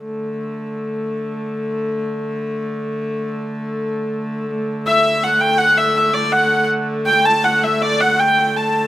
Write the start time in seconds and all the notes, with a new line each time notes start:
0.03 D3 A3
4.49 D3 A3
4.87 E5
5.24 F#5
5.41 G5
5.58 F#5
5.78 E5
5.96 E5
6.14 D5
6.32 F#5
7.06 G5
7.25 A5
7.44 F#5
7.64 E5
7.82 D5
8.01 F#5
8.20 G5
8.39 G5
8.57 A5